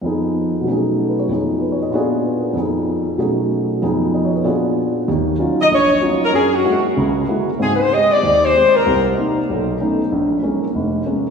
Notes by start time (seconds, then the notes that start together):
0.01 F2 F3 B3 D#4
0.06 G#4
0.61 B2 F#3
0.66 A3 C#4
0.70 D#4 G#4
0.98 A4
1.08 B4
1.19 C#5
1.27 F2 F3 B3 D#4
1.32 G#4
1.61 B4
1.72 C#5
1.82 D#5
1.90 A#2 B3 D4 F4 F#4
1.95 G#4
2.24 B4
2.40 A#4
2.53 F2 F3 B3 D#4
2.58 G#4
3.18 B2 F#3 A3 C#4 D#4 G#4
3.82 F2 F3 B3 D#4 G#4
4.14 D#5
4.25 C#5
4.35 B4
4.44 A#2 B3 D4 F4 F#4 G#4
5.08 D#2 D#3
5.39 F#3 C#4 D#4 F4
5.61 D#5
5.71 A#1 C#5
6.01 F#3 C#4 D#4 F4
6.24 A#4
6.33 F#2 G#4
6.54 F#4
6.65 G#3 A#3 E4 F#4
6.97 C#2 C#3
7.28 G#3 A#3 E4 F#4
7.59 G#2 C4 G#4
7.75 B4
7.80 C5
7.91 G#3 C4 G4 D#5
8.12 D5
8.23 D#2
8.44 C5
8.55 G#3 C4 G4
8.76 A#4
8.86 C2
9.17 A#3 C4 D#4
9.49 B1
9.80 A3 B3 C#4 D#4
10.12 A#1
10.43 G#3 A#3 C#4
10.75 F1
11.06 G#3 A#3 C#4